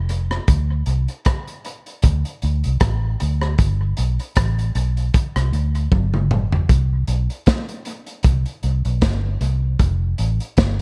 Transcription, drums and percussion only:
0.09 closed hi-hat
0.31 cross-stick
0.48 kick, closed hi-hat
0.86 closed hi-hat
1.08 closed hi-hat
1.25 kick, cross-stick, closed hi-hat
1.48 closed hi-hat
1.65 closed hi-hat
1.86 closed hi-hat
2.02 kick, closed hi-hat
2.25 closed hi-hat
2.42 closed hi-hat
2.64 closed hi-hat
2.80 kick, cross-stick, closed hi-hat
3.20 closed hi-hat
3.42 cross-stick
3.58 kick, closed hi-hat
3.97 closed hi-hat
4.19 closed hi-hat
4.36 kick, cross-stick, closed hi-hat
4.59 closed hi-hat
4.75 closed hi-hat
4.97 closed hi-hat
5.14 kick, closed hi-hat
5.36 cross-stick, closed hi-hat
5.53 closed hi-hat
5.75 closed hi-hat
5.92 kick, high tom
6.14 mid tom
6.31 mid tom
6.52 floor tom
6.69 kick, closed hi-hat
7.07 closed hi-hat
7.30 closed hi-hat
7.46 kick, snare, closed hi-hat
7.69 closed hi-hat
7.85 closed hi-hat
8.07 closed hi-hat
8.23 kick, closed hi-hat
8.46 closed hi-hat
8.63 closed hi-hat
8.85 closed hi-hat
9.01 kick, snare, closed hi-hat
9.41 closed hi-hat
9.79 kick, closed hi-hat
10.18 closed hi-hat
10.40 closed hi-hat
10.57 kick, snare, closed hi-hat

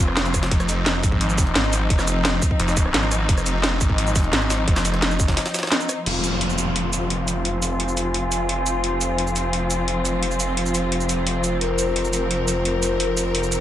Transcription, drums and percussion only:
0.08 cross-stick
0.17 snare, closed hi-hat
0.25 closed hi-hat, shaker
0.34 kick, cross-stick, closed hi-hat, shaker
0.43 snare, closed hi-hat
0.51 kick, closed hi-hat
0.60 cross-stick, closed hi-hat, shaker
0.69 closed hi-hat, shaker
0.86 snare, closed hi-hat
1.03 kick, closed hi-hat, shaker
1.12 kick
1.21 closed hi-hat
1.30 shaker
1.38 kick, closed hi-hat, open hi-hat, shaker
1.47 closed hi-hat
1.55 snare, closed hi-hat
1.64 closed hi-hat
1.73 closed hi-hat, shaker
1.90 kick, closed hi-hat
1.99 cross-stick, snare, shaker
2.08 closed hi-hat, shaker
2.25 snare, closed hi-hat
2.42 kick, closed hi-hat, open hi-hat, shaker
2.51 kick
2.60 closed hi-hat
2.68 snare, shaker
2.77 kick, closed hi-hat, shaker
2.86 cross-stick
2.94 snare, closed hi-hat
3.03 closed hi-hat
3.12 cross-stick, closed hi-hat, shaker
3.29 kick, closed hi-hat
3.38 cross-stick, closed hi-hat, shaker
3.46 closed hi-hat, shaker
3.64 snare, closed hi-hat
3.81 kick, closed hi-hat, shaker
3.90 kick
3.98 closed hi-hat
4.07 shaker
4.16 kick, closed hi-hat, open hi-hat, shaker
4.24 closed hi-hat
4.33 snare, closed hi-hat
4.42 closed hi-hat
4.50 snare, closed hi-hat, shaker
4.68 kick, closed hi-hat
4.76 cross-stick, snare, closed hi-hat, shaker
4.85 closed hi-hat, shaker
4.94 cross-stick, closed hi-hat
5.02 snare, closed hi-hat
5.11 shaker
5.20 kick, closed hi-hat, open hi-hat, shaker
5.28 kick, snare, closed hi-hat
5.37 snare, closed hi-hat
5.46 snare, closed hi-hat, shaker
5.54 snare, closed hi-hat, shaker
5.59 snare, closed hi-hat
5.63 cross-stick, snare, closed hi-hat
5.67 snare, closed hi-hat
5.72 snare, closed hi-hat
5.80 closed hi-hat, shaker
5.89 cross-stick, closed hi-hat, shaker
6.06 closed hi-hat, crash
6.24 closed hi-hat, shaker
6.41 closed hi-hat
6.50 shaker
6.58 closed hi-hat, shaker
6.76 closed hi-hat
6.93 closed hi-hat, shaker
7.10 closed hi-hat
7.28 closed hi-hat, shaker
7.45 closed hi-hat
7.62 closed hi-hat, shaker
7.80 closed hi-hat
7.88 shaker
7.97 closed hi-hat, shaker
8.14 closed hi-hat
8.32 closed hi-hat, shaker
8.49 closed hi-hat
8.66 closed hi-hat, shaker
8.84 closed hi-hat
9.01 closed hi-hat, shaker
9.18 closed hi-hat
9.27 shaker
9.36 closed hi-hat, shaker
9.53 closed hi-hat
9.71 closed hi-hat, shaker
9.88 closed hi-hat
10.05 closed hi-hat, shaker
10.23 closed hi-hat
10.31 shaker
10.40 closed hi-hat, shaker
10.57 closed hi-hat
10.66 shaker
10.75 closed hi-hat, shaker
10.92 closed hi-hat
11.01 shaker
11.09 closed hi-hat, shaker
11.27 closed hi-hat
11.44 closed hi-hat, shaker
11.61 closed hi-hat
11.79 closed hi-hat, shaker
11.96 closed hi-hat
12.05 shaker
12.13 closed hi-hat, shaker
12.31 closed hi-hat
12.48 closed hi-hat, shaker
12.65 closed hi-hat
12.83 closed hi-hat, shaker
13.00 closed hi-hat
13.17 closed hi-hat, shaker
13.35 closed hi-hat
13.43 shaker
13.52 closed hi-hat, shaker

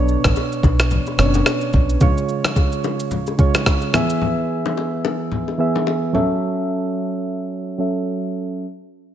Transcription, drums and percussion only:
0.09 shaker
0.24 kick, cross-stick, low bongo, shaker
0.36 high bongo, shaker
0.53 shaker
0.63 kick, high bongo, low bongo, shaker
0.80 cross-stick, shaker
0.91 low conga, shaker
1.07 high bongo, shaker
1.19 cross-stick, shaker
1.34 low bongo, shaker
1.46 cross-stick, high bongo, shaker
1.61 shaker
1.73 kick, low conga, shaker
1.90 shaker
2.01 kick, low conga, shaker
2.18 shaker
2.29 shaker
2.45 cross-stick, low bongo, shaker
2.56 kick, high bongo, shaker
2.73 shaker
2.84 high bongo, low bongo, shaker
3.00 shaker
3.11 low conga, shaker
3.27 high bongo, shaker
3.39 kick, shaker
3.55 cross-stick, low bongo, shaker
3.66 kick, cross-stick, high bongo, shaker
3.82 shaker
3.94 cross-stick, low conga, shaker
4.10 shaker
4.21 low conga
4.66 low bongo
4.77 high bongo
5.05 high bongo, low bongo
5.32 low conga
5.48 high bongo
5.76 low bongo
5.87 high bongo
6.15 low conga

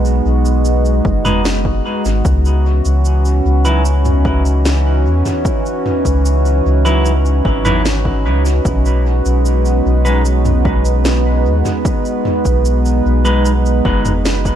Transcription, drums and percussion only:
0.05 cabasa
0.45 cabasa
0.65 cabasa
0.86 cabasa
1.05 kick
1.25 mid tom, cabasa
1.45 snare, cabasa
1.65 kick
2.05 cabasa
2.25 kick, cabasa
2.45 cabasa
2.85 cabasa
3.05 cabasa
3.25 cabasa
3.65 cabasa
3.85 cabasa
4.05 mid tom, cabasa
4.25 kick
4.46 cabasa
4.65 snare, cabasa
5.26 mid tom, cabasa
5.45 kick, cabasa
5.66 cabasa
5.86 mid tom
6.05 kick, cabasa
6.25 cabasa
6.46 cabasa
6.86 cabasa
7.05 cabasa
7.25 cabasa
7.45 kick
7.65 mid tom, cabasa
7.86 snare, cabasa
8.05 kick
8.45 cabasa
8.65 kick, cabasa
8.86 cabasa
9.25 cabasa
9.46 cabasa
9.65 cabasa
10.06 cabasa
10.25 cabasa
10.45 mid tom, cabasa
10.65 kick
10.85 cabasa
11.05 snare, cabasa
11.65 mid tom, cabasa
11.85 kick, cabasa
12.05 cabasa
12.25 mid tom
12.45 kick, cabasa
12.65 cabasa
12.86 cabasa
13.25 cabasa
13.45 cabasa
13.66 cabasa
13.85 kick
14.05 mid tom, cabasa
14.25 snare, cabasa
14.45 kick, cabasa

